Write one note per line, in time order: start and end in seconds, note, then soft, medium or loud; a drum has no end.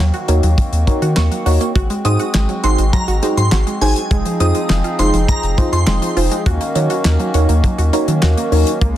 0.00 0.11 D#2 loud
0.00 1.72 D#3 medium
0.00 0.12 F#3 medium
0.00 1.72 A#3 medium
0.00 1.73 C4 medium
0.00 4.07 F#4 medium
0.14 0.26 F#4 medium
0.14 closed hi-hat soft
0.28 0.41 D#2 loud
0.28 0.41 A#3 medium
0.28 0.47 D#4 medium
0.28 0.47 F#4 medium
0.28 0.47 A#4 medium
0.28 0.47 C#5 medium
0.28 closed hi-hat medium
0.43 0.55 D#2 medium
0.43 0.56 F#3 medium
0.43 closed hi-hat soft
0.58 kick loud
0.58 closed hi-hat medium
0.73 0.85 D#2 medium
0.73 closed hi-hat medium
0.87 1.06 D#4 medium
0.87 1.06 F#4 medium
0.87 1.06 A#4 medium
0.87 1.06 C#5 loud
0.87 kick loud
0.87 closed hi-hat medium
1.02 1.14 D#3 loud
1.02 1.15 F#4 medium
1.02 closed hi-hat medium
1.17 1.29 D#2 loud
1.17 1.29 A#3 medium
1.17 1.72 C#6 medium
1.17 snare loud
1.17 clap loud
1.31 1.44 F#3 medium
1.31 closed hi-hat medium
1.46 1.58 D#2 medium
1.46 1.65 D#4 medium
1.46 1.59 F#4 medium
1.46 1.65 F#4 medium
1.46 1.65 A#4 medium
1.46 1.65 C#5 medium
1.46 open hi-hat medium
1.61 1.73 A#3 medium
1.61 closed hi-hat medium
1.75 1.88 G#1 loud
1.75 4.09 G#3 medium
1.75 6.42 C4 medium
1.75 1.88 F#4 loud
1.75 kick loud
1.75 closed hi-hat medium
1.90 2.03 G#3 medium
1.90 closed hi-hat medium
2.05 2.17 G#2 loud
2.05 2.18 F#3 medium
2.05 2.24 D#4 medium
2.05 2.24 F#4 medium
2.05 2.24 G#4 medium
2.05 2.24 C5 loud
2.05 2.14 D#6 medium
2.05 closed hi-hat medium
2.19 2.32 F#4 medium
2.19 closed hi-hat soft
2.34 2.47 G#1 loud
2.34 2.47 G#3 medium
2.34 snare loud
2.34 clap loud
2.49 2.62 F#3 medium
2.49 closed hi-hat soft
2.64 2.76 G#1 loud
2.64 2.83 D#4 medium
2.64 2.76 F#4 medium
2.64 2.83 F#4 medium
2.64 2.83 G#4 medium
2.64 2.83 C5 medium
2.64 2.73 C6 medium
2.64 closed hi-hat medium
2.78 2.91 G#1 loud
2.78 2.91 G#3 medium
2.78 closed hi-hat soft
2.93 3.06 F#3 medium
2.93 3.03 A#5 medium
2.93 kick medium
2.93 closed hi-hat medium
3.08 3.20 G#1 medium
3.08 3.21 F#4 medium
3.08 closed hi-hat medium
3.23 3.35 G#3 medium
3.23 3.42 D#4 medium
3.23 3.42 F#4 medium
3.23 3.42 G#4 medium
3.23 3.42 C5 medium
3.23 closed hi-hat medium
3.37 3.50 G#2 loud
3.37 3.50 F#3 medium
3.37 3.47 C6 medium
3.37 closed hi-hat medium
3.52 3.64 G#1 loud
3.52 3.65 F#4 medium
3.52 snare loud
3.52 clap loud
3.67 3.79 G#3 medium
3.67 closed hi-hat medium
3.81 3.94 G#1 loud
3.81 3.94 F#3 medium
3.81 4.00 D#4 medium
3.81 4.00 F#4 medium
3.81 4.00 G#4 medium
3.81 4.00 C5 medium
3.81 3.91 G#5 medium
3.81 open hi-hat medium
3.96 closed hi-hat medium
4.11 4.23 F1 loud
4.11 6.44 F3 medium
4.11 4.23 G#3 loud
4.11 6.44 D#4 medium
4.11 6.44 G#4 medium
4.11 kick loud
4.11 closed hi-hat medium
4.25 4.38 F3 medium
4.25 closed hi-hat medium
4.40 4.52 F2 loud
4.40 4.59 D#4 medium
4.40 4.59 F4 medium
4.40 4.59 G#4 medium
4.40 4.59 C5 loud
4.40 4.50 D#6 medium
4.40 closed hi-hat medium
4.55 4.68 G#3 medium
4.55 closed hi-hat soft
4.70 4.82 F1 loud
4.70 4.82 F3 medium
4.70 snare loud
4.70 clap medium
4.84 4.97 F4 medium
4.84 closed hi-hat soft
4.99 5.11 F1 medium
4.99 5.12 G#3 medium
4.99 5.18 D#4 medium
4.99 5.18 F4 medium
4.99 5.18 G#4 medium
4.99 5.18 C5 medium
4.99 5.09 C6 medium
4.99 closed hi-hat medium
5.14 5.26 F1 loud
5.14 5.26 F3 medium
5.14 closed hi-hat soft
5.28 5.38 A#5 medium
5.28 kick medium
5.28 closed hi-hat medium
5.43 5.55 F1 medium
5.43 closed hi-hat medium
5.58 5.77 D#4 medium
5.58 5.77 F4 medium
5.58 5.77 G#4 medium
5.58 5.77 C5 medium
5.58 kick loud
5.58 closed hi-hat medium
5.73 5.85 F2 loud
5.73 5.85 F4 medium
5.73 5.91 C6 medium
5.73 closed hi-hat medium
5.87 6.00 F1 loud
5.87 6.00 G#3 medium
5.87 snare loud
5.87 clap loud
6.02 6.15 F3 medium
6.02 closed hi-hat medium
6.17 6.29 F1 loud
6.17 6.36 D#4 medium
6.17 6.29 F4 medium
6.17 6.36 F4 medium
6.17 6.36 G#4 medium
6.17 6.36 C5 medium
6.17 open hi-hat medium
6.31 6.44 G#3 medium
6.31 closed hi-hat medium
6.46 6.58 D#2 loud
6.46 8.79 D#3 medium
6.46 8.97 A#3 medium
6.46 8.79 C#4 medium
6.46 6.59 F#4 loud
6.46 8.79 F#4 medium
6.46 kick loud
6.46 closed hi-hat medium
6.61 6.73 A#3 medium
6.61 closed hi-hat medium
6.75 6.88 D#3 loud
6.75 6.88 F#3 medium
6.75 6.95 D#4 medium
6.75 6.95 F#4 medium
6.75 6.95 A#4 medium
6.75 6.95 C#5 loud
6.75 closed hi-hat medium
6.90 7.03 F#4 medium
6.90 closed hi-hat soft
7.05 7.17 D#2 loud
7.05 7.18 A#3 medium
7.05 snare loud
7.05 clap medium
7.19 7.32 F#3 medium
7.19 closed hi-hat soft
7.34 7.47 D#2 medium
7.34 7.53 D#4 medium
7.34 7.53 F#4 medium
7.34 7.47 F#4 medium
7.34 7.53 A#4 medium
7.34 7.53 C#5 medium
7.34 closed hi-hat medium
7.49 7.61 D#2 loud
7.49 7.62 A#3 medium
7.49 closed hi-hat soft
7.64 7.76 F#3 medium
7.64 kick loud
7.64 closed hi-hat medium
7.78 7.91 D#2 medium
7.78 7.91 F#4 medium
7.78 closed hi-hat medium
7.93 8.06 A#3 medium
7.93 8.12 D#4 medium
7.93 8.12 F#4 medium
7.93 8.12 A#4 medium
7.93 8.12 C#5 loud
7.93 closed hi-hat medium
8.08 8.20 D#3 loud
8.08 8.21 F#3 medium
8.08 closed hi-hat medium
8.22 8.35 D#2 loud
8.22 8.35 F#4 medium
8.22 snare loud
8.22 clap loud
8.37 8.50 A#3 medium
8.37 closed hi-hat medium
8.52 8.64 D#2 loud
8.52 8.65 F#3 medium
8.52 8.71 D#4 medium
8.52 8.71 F#4 medium
8.52 8.71 A#4 medium
8.52 8.71 C#5 loud
8.52 open hi-hat medium
8.67 closed hi-hat medium
8.81 8.94 C#2 loud
8.81 8.97 C#3 medium
8.81 8.97 G#3 medium
8.81 8.94 A#3 loud
8.81 8.97 F4 medium
8.81 kick loud
8.81 closed hi-hat medium